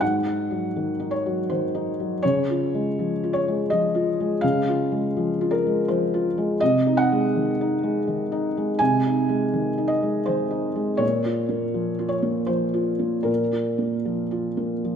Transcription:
Already playing: F#3
0.01 G#2 F#5
0.26 D#4
0.51 F#3
0.76 D#3
1.00 D#4
1.11 C#5
1.26 F#3
1.50 D#3 C5
1.75 D#4
2.00 F#3
2.23 C#3 C#5
2.50 F4
2.74 G#3
2.99 F3
3.23 F4
3.33 C#5
3.48 G#3
3.70 F3 D#5
3.95 F4
4.20 G#3
4.41 C#3 F5
4.68 F4
4.92 G#3
5.17 F3
5.41 F4
5.51 A#4
5.66 G#3
5.88 F3 C5
6.14 F4
6.38 G#3
6.60 C3 D#5
6.87 D#4
6.97 F#5
7.12 G#3
7.36 D#3
7.61 D#4
7.83 G#3
8.07 D#3
8.32 D#4
8.57 G#3
8.79 C3 G#5
9.06 D#4
9.29 G#3
9.53 D#3
9.78 D#4
9.88 D#5
10.02 G#3
10.26 D#3 C5
10.51 D#4
10.75 G#3
10.97 A#2 C#5
11.25 F4
11.49 A#3
11.74 F3
11.99 F4
12.09 C#5
12.22 A#3
12.46 F3 C5
12.74 F4
12.99 A#3
13.23 A#2 A#4
13.51 F4
13.78 A#3
14.05 F3
14.31 F4
14.57 A#3
14.84 F3

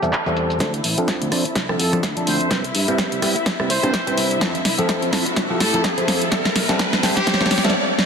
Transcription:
Already playing: A4 A5
0.02 E2 G3 C4 E4 A4, closed hi-hat, shaker
0.13 clap, closed hi-hat, shaker
0.26 E2 G3 C4 E4 A4, closed hi-hat, shaker
0.37 closed hi-hat
0.50 closed hi-hat, shaker
0.60 D2 F3 C4 D4 E4 A4 E5, kick, snare, closed hi-hat, riser
0.74 closed hi-hat
0.84 A1, open hi-hat
0.97 F3 C4 D4 A4, closed hi-hat
1.08 kick, snare, closed hi-hat
1.21 D2, closed hi-hat
1.31 F3 C4 D4 A4, cross-stick, open hi-hat
1.45 closed hi-hat
1.55 C2, kick, snare, closed hi-hat
1.69 F3 C4 D4 A4, cross-stick
1.79 F2 A4, open hi-hat
1.92 F3 C4 D4 A4, cross-stick, closed hi-hat
2.03 D2, kick, snare, closed hi-hat
2.16 F3 C4 D4 A4, closed hi-hat
2.27 D2 C5, open hi-hat
2.41 closed hi-hat
2.50 C2 G3 C4 E4 B4, kick, snare, closed hi-hat
2.64 closed hi-hat
2.75 G2, open hi-hat
2.88 G3 C4 E4 B4, closed hi-hat
2.98 kick, snare, closed hi-hat
3.12 C2, closed hi-hat
3.22 G3 C4 E4 B4, cross-stick, open hi-hat
3.36 closed hi-hat
3.46 kick, snare, closed hi-hat
3.59 C2 G3 C4 E4 B4, cross-stick
3.70 C5, open hi-hat
3.83 G2 G3 C4 E4 B4, cross-stick, closed hi-hat
3.94 kick, snare, closed hi-hat
4.07 G3 C4 E4 B4, closed hi-hat
4.18 C2, open hi-hat
4.31 closed hi-hat
4.41 F2 F3 C4 E4 A4, kick, snare, closed hi-hat
4.55 closed hi-hat
4.65 C2, snare, open hi-hat
4.78 F3 C4 E4 A4, closed hi-hat
4.89 kick, snare, closed hi-hat
5.02 F2, closed hi-hat
5.12 F3 C4 E4 A4, snare, open hi-hat
5.26 closed hi-hat
5.36 C2, kick, snare, closed hi-hat
5.50 F3 C4 E4 A4
5.60 A2 A4, snare, open hi-hat
5.73 F3 C4 E4 A4, closed hi-hat
5.84 F2, kick, snare, closed hi-hat
5.97 F3 C4 E4 A4, closed hi-hat
6.08 F2, snare, open hi-hat
6.22 closed hi-hat
6.31 E2 G3 C4 E4 A4, kick, snare, closed hi-hat
6.45 snare, closed hi-hat
6.56 B1, snare, open hi-hat
6.69 G3 C4 E4 A4, snare, closed hi-hat
6.79 kick, snare, closed hi-hat
6.93 E2, snare, closed hi-hat
7.03 G3 C4 E4 A4, snare, open hi-hat
7.17 G4, snare, closed hi-hat
7.27 kick, snare, closed hi-hat
7.34 snare
7.40 E2 G3 C4 E4 A4, snare
7.46 snare
7.51 snare, open hi-hat
7.58 snare
7.64 B1 G3 C4 E4 A4, snare, closed hi-hat
7.70 snare
7.99 snare

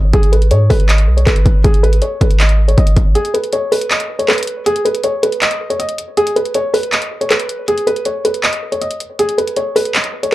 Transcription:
Already playing: G#1
0.13 G#1 G#4, kick, closed hi-hat
0.23 closed hi-hat
0.32 B4, closed hi-hat
0.42 closed hi-hat
0.51 G#2 C#5, closed hi-hat
0.70 G#1 B4, kick, open hi-hat
0.80 closed hi-hat
0.89 D#5, clap, closed hi-hat
0.98 closed hi-hat
1.08 B1
1.17 C#5, closed hi-hat
1.26 G#1 B4, kick, clap, closed hi-hat
1.36 closed hi-hat
1.46 G#1, kick, closed hi-hat
1.64 G#1 G#4, kick, closed hi-hat
1.74 closed hi-hat
1.83 B4, closed hi-hat
1.93 closed hi-hat
2.02 C#5, closed hi-hat
2.21 G#1 B4, kick, closed hi-hat
2.31 closed hi-hat
2.40 D#5, clap, closed hi-hat
2.49 closed hi-hat
2.68 C#5, closed hi-hat
2.78 G#1 D#5, kick, closed hi-hat
2.87 closed hi-hat
2.97 G#1, kick, closed hi-hat
3.15 G#4, closed hi-hat
3.25 closed hi-hat
3.34 B4, closed hi-hat
3.44 closed hi-hat
3.53 C#5, closed hi-hat
3.72 B4, open hi-hat
3.81 closed hi-hat
3.91 D#5, clap, closed hi-hat
4.00 closed hi-hat
4.19 C#5, closed hi-hat
4.28 B4, clap, closed hi-hat
4.33 closed hi-hat
4.38 closed hi-hat
4.43 closed hi-hat
4.47 closed hi-hat
4.66 G#4, closed hi-hat
4.76 closed hi-hat
4.85 B4, closed hi-hat
4.95 closed hi-hat
5.04 C#5, closed hi-hat
5.23 B4, closed hi-hat
5.32 closed hi-hat
5.42 D#5, clap, closed hi-hat
5.51 closed hi-hat
5.70 C#5, closed hi-hat
5.79 D#5, closed hi-hat
5.89 closed hi-hat
5.98 closed hi-hat
6.17 G#4, closed hi-hat
6.27 closed hi-hat
6.36 B4, closed hi-hat
6.45 closed hi-hat
6.54 C#5, closed hi-hat
6.74 B4, open hi-hat
6.83 closed hi-hat
6.92 D#5, clap, closed hi-hat
7.02 closed hi-hat
7.21 C#5, closed hi-hat
7.30 B4, clap, closed hi-hat
7.40 closed hi-hat
7.49 closed hi-hat
7.68 G#4, closed hi-hat
7.78 closed hi-hat
7.87 B4, closed hi-hat
7.96 closed hi-hat
8.05 C#5, closed hi-hat
8.25 B4, closed hi-hat
8.34 closed hi-hat
8.44 D#5, clap, closed hi-hat
8.53 closed hi-hat
8.72 C#5, closed hi-hat
8.81 D#5, closed hi-hat
8.91 closed hi-hat
9.00 closed hi-hat
9.19 G#4, closed hi-hat
9.29 closed hi-hat
9.38 B4, closed hi-hat
9.48 closed hi-hat
9.56 C#5, closed hi-hat
9.76 B4, open hi-hat
9.85 closed hi-hat
9.95 D#5, clap, closed hi-hat
10.04 closed hi-hat
10.23 C#5, closed hi-hat

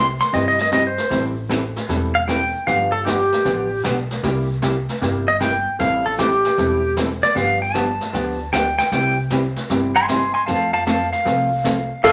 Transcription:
Already playing: C2
0.20 C6, snare
0.32 G2 C3 G3 C4 E4 G4 D#5, brush sweep, kick, snare
0.48 D#5
0.59 D#5, snare
0.72 C3 G3 C4 E4 G4 D#5, kick, snare, hi-hat pedal
0.87 C5
0.98 snare
1.10 A1 E3 G3 C4 E4 A4, brush sweep, kick, snare
1.49 E3 G3 C4 E4 A4, kick, snare, hi-hat pedal
1.76 snare
1.89 E1 E3 G3 C4 E4 A4, brush sweep, kick, snare
2.15 F5
2.28 E3 G3 C4 E4 A4 G5, kick, snare, hi-hat pedal
2.67 G1 D3 F3 B3 D4 G4 F5, brush sweep, kick, snare
2.92 A4
3.05 D3 F3 B3 D4 G4, kick, snare, hi-hat pedal
3.32 snare
3.45 A1 D3 F3 B3 D4 G4, brush sweep, kick, snare
3.84 B1 D3 F3 B3 D4 G4, kick, snare, hi-hat pedal
4.11 snare
4.23 C2 C3 G3 A#3 E4 G4, brush sweep, kick, snare
4.62 C3 G3 A#3 E4 G4, kick, snare, hi-hat pedal
4.89 snare
5.02 G1 C3 G3 A#3 E4 G4, brush sweep, kick, snare
5.28 D#5
5.40 C3 G3 A#3 E4 G4 G5, kick, snare, hi-hat pedal
5.79 A1 E3 G3 C4 E4 A4 F5, brush sweep, kick, snare
6.06 A4
6.18 E3 G3 C4 E4 G4 A4, kick, snare, hi-hat pedal
6.45 snare
6.58 E1 E3 G3 C4 E4 A4, brush sweep, kick, snare
6.97 E3 G3 C4 E4 A4, kick, snare, hi-hat pedal
7.23 D5, snare
7.35 G1 D3 F3 B3 D4 G4 F5, brush sweep, kick, snare
7.62 G5
7.74 D3 F3 B3 D4 G4 A5, kick, snare, hi-hat pedal
8.01 snare
8.13 D2 D3 F3 B3 D4 G4, brush sweep, kick, snare
8.53 D3 F3 B3 D4 G4 G5, kick, snare, hi-hat pedal
8.78 G5, snare
8.92 C2 C3 G3 C4 E4 G4 G5, brush sweep, kick, snare
9.30 C3 G3 C4 E4 G4, kick, snare, hi-hat pedal
9.56 snare
9.69 G1 C3 G3 C4 E4 G4, brush sweep, kick, snare
9.96 G#5 C6
10.08 C3 G3 C4 E4 G4 C6, kick, snare, hi-hat pedal
10.34 G#5 C6
10.46 F2 F3 A3 C4 F4 A4 F5 A5, brush sweep, kick, snare
10.73 F5 A5
10.87 F3 A3 C4 F4 A4 F5 A5, kick, snare, hi-hat pedal
11.13 F5, snare
11.25 C2 F3 A3 C4 F4 A4, brush sweep, kick, snare
11.64 F3 A3 C4 F4 A4, kick, snare, hi-hat pedal
12.03 F1 F3 C4 D4 A4 F5, brush sweep, kick, snare

